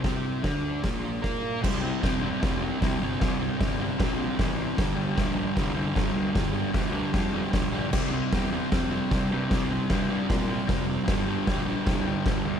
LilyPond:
<<
  \new Staff \with { instrumentName = "Distorted electric guitar" } { \clef bass \time 4/4 \key c \mixolydian \tempo 4 = 152 <c c'>4 <d d'>4 <bes, bes>4 <bes bes'>4 | <c g c'>8 <g c'>8 <c g c'>8 <c g c'>8 <c g c'>8 <g c'>8 <c g c'>8 <g c'>8 | <c g c'>8 <g c'>8 <c g c'>8 <c g c'>8 <c g c'>8 <g c'>8 <c g c'>8 <g c'>8 | <g, d g>8 <d g>8 <g, d g>8 <g, d g>8 <g, d g>8 <d g>8 <g, d g>8 <d g>8 |
<g, d g>8 <d g>8 <g, d g>8 <g, d g>8 <g, d g>8 <d g>8 <g, d g>8 <d g>8 | <c g c'>8 <g c'>8 <c g c'>8 <c g c'>8 <c g c'>8 <g c'>8 <c g c'>8 <g c'>8 | <c g c'>8 <g c'>8 <c g c'>8 <c g c'>8 <c g c'>8 <g c'>8 <c g c'>8 <g c'>8 | <g, d g>8 <d g>8 <g, d g>8 <g, d g>8 <g, d g>8 <d g>8 <g, d g>8 <d g>8 | }
  \new Staff \with { instrumentName = "Picked electric bass" } { \clef bass \time 4/4 \key c \mixolydian c,4 d,4 bes,,4 bes,4 | c,4 e,,4 f,,4 c,8 g,,8 | c,4 g,,4 bes,,4 a,,4 | g,,4 bes,,4 c,4 g,,8 d,8 |
g,,4 d,4 f,4 bes,,4 | c,4 e,4 f,4 c,8 g,8 | c,4 g,4 bes,4 f,,4 | g,,4 bes,,4 c,4 g,,8 d,8 | }
  \new DrumStaff \with { instrumentName = "Drums" } \drummode { \time 4/4 <hho bd sn>4 <hho bd sn>4 <hho bd sn>4 <hho bd sn>4 | <cymc bd sn>4 <hho bd sn>4 <hho bd sn>4 <hho bd sn>4 | <hho bd sn>4 <hho bd sn>4 <hho bd sn>4 <hho bd sn>4 | <hho bd sn>4 <hho bd sn>4 <hho bd sn>4 <hho bd sn>4 |
<hho bd sn>4 <hho bd sn>4 <hho bd sn>4 <hho bd sn>4 | <cymc bd sn>4 <hho bd sn>4 <hho bd sn>4 <hho bd sn>4 | <hho bd sn>4 <hho bd sn>4 <hho bd sn>4 <hho bd sn>4 | <hho bd sn>4 <hho bd sn>4 <hho bd sn>4 <hho bd sn>4 | }
>>